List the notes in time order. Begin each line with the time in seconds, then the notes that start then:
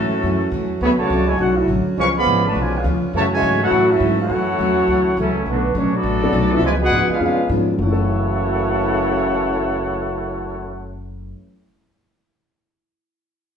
Already playing: F#2 G#2 E3 A3 C#4 E4 F#4 A4 E5
0.23 F#2 E3 A3 C#4
0.52 E2 F#2 E3 A3 C#4
0.81 D2 D3 F#3 A3 B3 C#4 G#4 C#5 E5 B5
0.98 C#3 F#3 A3 F#4 C#5 D5 A5, muted upright bass stroke
1.10 C#2 D3 F#3 A3 C#4
1.26 G#3 E4 A4 C#5 G#5
1.37 B1 D3 F#3 A3 C#4 D4 F#4 A4 C#5 F#5
1.56 C#4 E4 F#4 A4 E5
1.68 A1 D3 F#3 A3 C#4
1.86 muted upright bass stroke
1.97 C#2 C#3 D3 F3 G#3 B3 C#4 D4 F4 B4 F5 G#5 C#6
2.15 F3 G#3 B3 G#4 D5 F5 B5
2.26 G#1 C#3 F3 B3 D4
2.46 A3 F#4 B4 D5 A5
2.55 B1 B2 C#3 F3 G#3 B3 D4
2.59 F4 B4 D5 G#5
2.76 G#3 B3 D4 F4 G#4 B4 F5
2.84 D2 C#3 F3 B3 D4
3.02 muted upright bass stroke
3.13 F#2 C#3 E3 A3 C#4 F#4 C#5 E5 A5
3.33 C#3 E3 G#3 F#4 C#5 E5 G#5
3.42 F#2 G#2 E3 A3 C#4
3.62 A3 C#4 E4 F#4 A4 C#5 F#5
3.71 F#2 A2 E3 A3 C#4
3.90 A3 C#4 E4 F#4 A4 E5
4.00 F#2 G#2 E3 A3 C#4
4.20 A3 C#4 E4 F#4 A4 C#5 F#5
4.29 F#2 E3 A3 C#4
4.59 E2 F#2 E3 A3 C#4
4.88 D2 F#2 E3 A3 C#4
5.17 C#2 F#2 C#3 E3 F#3 A3 C#4 E4 A4
5.46 B1 B2 D3 F#3 A3 B3 D4 F#4 B4
5.75 A#1 B2 F#3 A3 C#4 D4 F#4 C#5
5.92 F#3 A3 B3 D4 F#4 A4 D5, muted upright bass stroke
6.03 A1 B2 F#3 A3 D4
6.22 F#3 B3 C#4 D4 A4
6.33 B1 B2 F#3 A3 D4
6.51 F3 B3 C#4 D4 E4 F#4 A4 B4 E5
6.61 C#2 B2 C#3 F3 G#3 B3 D4 F4 B4 D5 G#5
6.80 G#3 B3 D4 F#4 G#4 B4 F#5
6.91 G#2 C#3 F3 B3 D4
7.09 G#3 B3 D4 F4 G#4 B4 F5, muted upright bass stroke
7.20 F2 C#3 F3 G#3 B3 C#4 D4 F4 G#4 B4 F5
7.49 G#2 C#3 F3 B3 C#4 D4 G#4
7.68 F#2
7.73 F#2 F#3
7.78 F#1 F#2 C#3 E3 A3 E4 A4 C#5 F#5
7.86 A3 E4
7.92 C#4 A4